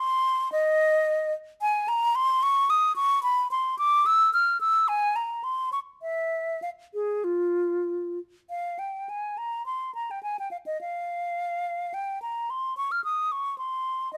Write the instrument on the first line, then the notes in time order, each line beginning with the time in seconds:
flute
0.00 C6
0.52 D#5
1.61 G#5
1.88 A#5
2.15 C6
2.43 C#6
2.70 D#6
2.96 C#6
3.23 B5
3.51 C6
3.78 D6
4.06 E6
4.34 F6
4.61 E6
4.88 G#5
5.16 A#5
5.44 C6
5.73 C#6
6.02 E5
6.62 F5
6.94 G#4
7.24 F4
8.50 F5
8.79 G5
9.09 G#5
9.38 A#5
9.66 C6
9.95 A#5
10.11 G5
10.23 G#5
10.39 G5
10.51 F5
10.66 D#5
10.81 F5
11.94 G5
12.22 A#5
12.50 C6
12.77 C#6
12.92 F6
13.04 D#6
13.32 C#6
13.58 C6
14.13 D#5